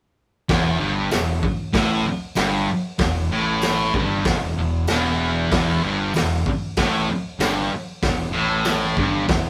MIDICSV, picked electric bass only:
0, 0, Header, 1, 3, 480
1, 0, Start_track
1, 0, Tempo, 626959
1, 380, Time_signature, 4, 2, 24, 8
1, 7272, End_track
2, 0, Start_track
2, 0, Title_t, "Picked electric bass"
2, 0, Program_c, 0, 34
2, 382, Note_on_c, 0, 28, 97
2, 604, Note_off_c, 0, 28, 0
2, 619, Note_on_c, 0, 31, 86
2, 842, Note_off_c, 0, 31, 0
2, 855, Note_on_c, 0, 28, 80
2, 1080, Note_off_c, 0, 28, 0
2, 1336, Note_on_c, 0, 33, 83
2, 1560, Note_off_c, 0, 33, 0
2, 1813, Note_on_c, 0, 31, 96
2, 2038, Note_off_c, 0, 31, 0
2, 2287, Note_on_c, 0, 28, 81
2, 2514, Note_off_c, 0, 28, 0
2, 2535, Note_on_c, 0, 33, 88
2, 2985, Note_off_c, 0, 33, 0
2, 3021, Note_on_c, 0, 31, 109
2, 3242, Note_off_c, 0, 31, 0
2, 3259, Note_on_c, 0, 28, 80
2, 3481, Note_off_c, 0, 28, 0
2, 3500, Note_on_c, 0, 28, 90
2, 3722, Note_off_c, 0, 28, 0
2, 3748, Note_on_c, 0, 28, 88
2, 4192, Note_off_c, 0, 28, 0
2, 4219, Note_on_c, 0, 28, 94
2, 4441, Note_off_c, 0, 28, 0
2, 4467, Note_on_c, 0, 31, 93
2, 4686, Note_off_c, 0, 31, 0
2, 4705, Note_on_c, 0, 28, 81
2, 4925, Note_off_c, 0, 28, 0
2, 5193, Note_on_c, 0, 33, 92
2, 5410, Note_off_c, 0, 33, 0
2, 5655, Note_on_c, 0, 31, 89
2, 5881, Note_off_c, 0, 31, 0
2, 6146, Note_on_c, 0, 28, 81
2, 6367, Note_off_c, 0, 28, 0
2, 6390, Note_on_c, 0, 33, 91
2, 6836, Note_off_c, 0, 33, 0
2, 6870, Note_on_c, 0, 31, 102
2, 7091, Note_off_c, 0, 31, 0
2, 7108, Note_on_c, 0, 28, 79
2, 7272, Note_off_c, 0, 28, 0
2, 7272, End_track
3, 0, Start_track
3, 0, Title_t, "Muted picked electric bass strokes"
3, 1099, Note_on_c, 9, 29, 43
3, 1176, Note_off_c, 9, 29, 0
3, 1576, Note_on_c, 9, 29, 43
3, 1652, Note_off_c, 9, 29, 0
3, 4945, Note_on_c, 9, 29, 46
3, 5022, Note_off_c, 9, 29, 0
3, 5430, Note_on_c, 9, 29, 44
3, 5506, Note_off_c, 9, 29, 0
3, 7272, End_track
0, 0, End_of_file